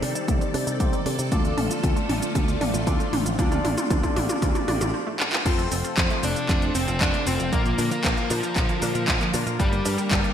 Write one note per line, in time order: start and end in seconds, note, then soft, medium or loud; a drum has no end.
0.00 0.12 C3 loud
0.00 1.28 D#3 medium
0.00 1.28 G3 medium
0.00 1.28 C4 medium
0.00 0.07 D4 loud
0.00 0.77 D#4 medium
0.00 0.77 G4 medium
0.00 4.90 A4 medium
0.00 0.77 C5 medium
0.00 0.77 D5 medium
0.00 1.28 D5 medium
0.00 open hi-hat loud
0.15 0.26 D#4 medium
0.15 closed hi-hat soft
0.15 cabasa medium
0.28 0.38 C2 medium
0.28 0.39 G3 medium
0.28 kick loud
0.28 closed hi-hat medium
0.28 mid tom medium
0.28 cabasa soft
0.41 0.52 C4 medium
0.41 closed hi-hat soft
0.41 cabasa soft
0.54 0.64 C3 medium
0.54 0.59 D4 loud
0.54 open hi-hat loud
0.67 0.77 C3 loud
0.67 0.78 D#4 medium
0.67 closed hi-hat soft
0.67 cabasa medium
0.80 0.90 C2 medium
0.80 0.91 G3 medium
0.80 0.99 D#4 medium
0.80 0.99 G4 medium
0.80 0.99 C5 medium
0.80 0.99 D5 medium
0.80 kick loud
0.80 closed hi-hat medium
0.80 mid tom medium
0.80 cabasa soft
0.93 1.04 C4 medium
0.93 closed hi-hat soft
0.93 cabasa soft
1.06 1.16 C3 medium
1.06 1.10 D4 loud
1.06 open hi-hat loud
1.19 1.29 C3 loud
1.19 1.30 D#4 medium
1.19 closed hi-hat soft
1.19 cabasa medium
1.32 1.52 D2 medium
1.32 4.90 D3 medium
1.32 1.43 F3 medium
1.32 4.90 F3 medium
1.32 4.90 A3 medium
1.32 2.84 D4 medium
1.32 4.90 F4 medium
1.32 2.84 F4 medium
1.32 2.84 A4 medium
1.32 2.84 D5 medium
1.32 kick loud
1.32 closed hi-hat medium
1.32 mid tom medium
1.32 cabasa soft
1.45 1.56 A3 medium
1.45 closed hi-hat soft
1.45 cabasa soft
1.57 1.68 A1 medium
1.57 1.62 D4 loud
1.57 open hi-hat loud
1.57 mid tom medium
1.71 1.81 F4 medium
1.71 closed hi-hat soft
1.71 cabasa medium
1.83 1.94 D2 loud
1.83 1.94 F3 medium
1.83 kick loud
1.83 closed hi-hat medium
1.83 mid tom medium
1.83 cabasa soft
1.96 2.07 A3 medium
1.96 closed hi-hat soft
1.96 cabasa soft
2.09 2.19 A1 loud
2.09 2.14 D4 loud
2.09 open hi-hat loud
2.09 mid tom medium
2.22 2.33 F4 medium
2.22 closed hi-hat soft
2.22 cabasa medium
2.35 2.55 D2 medium
2.35 2.46 F3 medium
2.35 kick loud
2.35 closed hi-hat medium
2.35 mid tom medium
2.35 cabasa soft
2.48 2.59 A3 medium
2.48 closed hi-hat soft
2.48 cabasa soft
2.61 2.71 A1 medium
2.61 2.65 D4 loud
2.61 open hi-hat loud
2.61 mid tom medium
2.74 2.84 A1 medium
2.74 2.85 F4 medium
2.74 closed hi-hat soft
2.74 cabasa medium
2.87 2.97 D2 loud
2.87 2.98 F3 medium
2.87 3.06 D4 medium
2.87 3.06 F4 medium
2.87 3.06 A4 medium
2.87 3.06 D5 medium
2.87 kick loud
2.87 closed hi-hat medium
2.87 mid tom medium
2.87 cabasa soft
3.00 3.11 A3 medium
3.00 closed hi-hat soft
3.00 cabasa soft
3.13 3.23 A1 medium
3.13 3.17 D4 loud
3.13 open hi-hat loud
3.13 mid tom medium
3.26 3.36 A1 medium
3.26 3.37 F4 medium
3.26 closed hi-hat soft
3.26 cabasa medium
3.39 3.59 D2 loud
3.39 3.50 F3 medium
3.39 4.91 D4 medium
3.39 4.91 F4 medium
3.39 4.91 A4 medium
3.39 4.91 D5 medium
3.39 kick loud
3.39 closed hi-hat medium
3.39 mid tom medium
3.39 cabasa medium
3.52 3.63 A3 medium
3.52 closed hi-hat soft
3.52 mid tom medium
3.52 cabasa soft
3.64 3.74 A1 medium
3.64 3.69 D4 loud
3.64 open hi-hat loud
3.64 mid tom loud
3.78 3.88 F4 medium
3.78 closed hi-hat soft
3.78 mid tom medium
3.78 cabasa medium
3.90 4.00 D2 medium
3.90 4.01 F3 medium
3.90 kick loud
3.90 closed hi-hat medium
3.90 mid tom medium
3.90 cabasa soft
4.03 4.14 A3 medium
4.03 kick medium
4.03 closed hi-hat soft
4.03 mid tom medium
4.03 cabasa soft
4.16 4.26 A1 loud
4.16 4.21 D4 loud
4.16 open hi-hat loud
4.16 mid tom loud
4.29 4.40 F4 medium
4.29 closed hi-hat soft
4.29 mid tom medium
4.29 cabasa medium
4.42 4.52 D2 medium
4.42 4.53 F3 medium
4.42 kick loud
4.42 closed hi-hat medium
4.42 mid tom loud
4.42 cabasa soft
4.55 4.66 A3 medium
4.55 closed hi-hat soft
4.55 mid tom medium
4.55 cabasa soft
4.68 4.78 A1 medium
4.68 4.72 D4 loud
4.68 open hi-hat loud
4.68 mid tom loud
4.81 4.91 A1 loud
4.81 4.92 F4 medium
4.81 closed hi-hat soft
4.81 mid tom medium
4.81 cabasa medium
4.94 5.05 F3 medium
5.07 5.18 A3 medium
5.20 5.24 D4 loud
5.20 clap medium
5.33 5.44 F4 medium
5.33 clap loud
5.46 5.66 F2 loud
5.46 7.51 C3 medium
5.46 5.56 F3 medium
5.46 9.55 F3 medium
5.46 7.51 A3 medium
5.46 6.98 C4 medium
5.46 9.55 F4 medium
5.46 6.98 F4 medium
5.46 7.50 A4 medium
5.46 6.98 A4 medium
5.46 6.98 C5 medium
5.46 kick loud
5.46 closed hi-hat loud
5.46 crash loud
5.46 cabasa soft
5.58 5.69 A3 medium
5.58 closed hi-hat soft
5.58 cabasa soft
5.71 5.81 F1 medium
5.71 5.76 C4 loud
5.71 open hi-hat loud
5.71 cabasa medium
5.84 5.95 F4 medium
5.84 closed hi-hat soft
5.84 cabasa soft
5.97 6.07 F2 medium
5.97 6.08 F3 medium
5.97 kick loud
5.97 clap loud
5.97 closed hi-hat loud
5.97 cabasa soft
6.10 6.21 A3 medium
6.10 closed hi-hat soft
6.10 cabasa soft
6.23 6.33 F1 loud
6.23 6.28 C4 loud
6.23 6.72 D4 medium
6.23 6.72 D5 loud
6.23 open hi-hat loud
6.23 cabasa medium
6.36 6.47 F4 medium
6.36 closed hi-hat soft
6.36 cabasa soft
6.49 6.69 F2 medium
6.49 6.60 F3 medium
6.49 kick loud
6.49 clap medium
6.49 closed hi-hat loud
6.49 cabasa soft
6.62 6.73 A3 medium
6.62 closed hi-hat soft
6.62 cabasa soft
6.75 6.85 F1 medium
6.75 6.79 C4 loud
6.75 7.00 C4 medium
6.75 6.99 C5 loud
6.75 open hi-hat loud
6.75 cabasa medium
6.88 6.98 F1 loud
6.88 6.99 F4 medium
6.88 closed hi-hat soft
6.88 cabasa soft
7.01 7.11 F2 loud
7.01 7.12 F3 medium
7.01 7.25 D4 medium
7.01 7.25 D5 loud
7.01 kick loud
7.01 clap loud
7.01 closed hi-hat loud
7.01 cabasa soft
7.14 7.25 A3 medium
7.14 closed hi-hat soft
7.14 cabasa soft
7.27 7.37 F1 loud
7.27 7.31 C4 loud
7.27 7.50 C4 medium
7.27 7.51 C4 medium
7.27 7.50 F4 medium
7.27 7.50 A4 medium
7.27 7.50 C5 medium
7.27 7.52 C5 loud
7.27 open hi-hat loud
7.27 cabasa medium
7.40 7.50 F1 medium
7.40 7.51 F4 medium
7.40 closed hi-hat soft
7.40 cabasa soft
7.52 7.73 A#1 loud
7.52 10.34 D3 medium
7.52 7.64 F3 medium
7.52 10.34 A#3 medium
7.52 9.05 A#3 medium
7.52 7.89 A#3 medium
7.52 9.05 D4 medium
7.52 9.05 F4 medium
7.52 9.57 A#4 medium
7.52 9.05 A#4 medium
7.52 7.90 A#4 loud
7.52 kick loud
7.52 closed hi-hat loud
7.52 cabasa soft
7.66 7.76 A#3 medium
7.66 closed hi-hat soft
7.66 cabasa soft
7.78 7.88 A#2 medium
7.78 7.83 D4 loud
7.78 open hi-hat loud
7.78 cabasa medium
7.91 8.28 A#3 medium
7.91 8.02 F4 medium
7.91 8.31 A#4 loud
7.91 closed hi-hat soft
7.91 cabasa soft
8.04 8.14 A#1 medium
8.04 8.15 F3 medium
8.04 kick loud
8.04 clap loud
8.04 closed hi-hat medium
8.04 cabasa soft
8.17 8.28 A#3 medium
8.17 closed hi-hat soft
8.17 cabasa soft
8.30 8.40 A#2 loud
8.30 9.30 F3 medium
8.30 8.35 D4 loud
8.30 9.30 F4 medium
8.30 open hi-hat loud
8.30 cabasa medium
8.43 8.54 F4 medium
8.43 closed hi-hat soft
8.43 cabasa soft
8.56 8.66 A#1 medium
8.56 8.67 F3 medium
8.56 kick loud
8.56 clap medium
8.56 closed hi-hat medium
8.56 cabasa soft
8.69 8.80 A#3 medium
8.69 closed hi-hat soft
8.69 cabasa soft
8.82 8.92 A#2 medium
8.82 8.86 D4 loud
8.82 open hi-hat loud
8.82 cabasa medium
8.95 9.05 A#2 loud
8.95 9.06 F4 medium
8.95 closed hi-hat soft
8.95 cabasa soft
9.08 9.18 A#1 medium
9.08 9.19 F3 medium
9.08 kick loud
9.08 clap loud
9.08 closed hi-hat medium
9.08 cabasa soft
9.21 9.32 A#3 medium
9.21 clap soft
9.21 closed hi-hat soft
9.21 cabasa soft
9.34 9.44 A#2 medium
9.34 9.56 A#3 medium
9.34 9.38 D4 loud
9.34 9.56 D4 medium
9.34 9.56 F4 medium
9.34 9.56 A#4 medium
9.34 open hi-hat loud
9.34 cabasa medium
9.47 9.57 A#2 loud
9.47 9.57 F4 medium
9.47 closed hi-hat soft
9.47 cabasa soft
9.59 9.79 G1 loud
9.59 10.34 G3 medium
9.59 9.70 G3 medium
9.59 10.34 G3 medium
9.59 10.34 D4 medium
9.59 10.34 G4 medium
9.59 10.34 A#4 loud
9.59 10.34 A#4 medium
9.59 10.34 D5 loud
9.59 kick loud
9.59 closed hi-hat medium
9.59 cabasa soft
9.72 9.83 A#3 medium
9.72 closed hi-hat soft
9.72 cabasa soft
9.85 9.95 G2 loud
9.85 9.90 D4 loud
9.85 open hi-hat loud
9.85 cabasa medium
9.98 10.09 G4 medium
9.98 closed hi-hat soft
9.98 cabasa soft
10.11 10.21 G1 loud
10.11 10.22 G3 medium
10.11 kick loud
10.11 clap loud
10.11 closed hi-hat medium
10.11 cabasa soft
10.24 10.34 A#3 medium
10.24 closed hi-hat soft
10.24 cabasa soft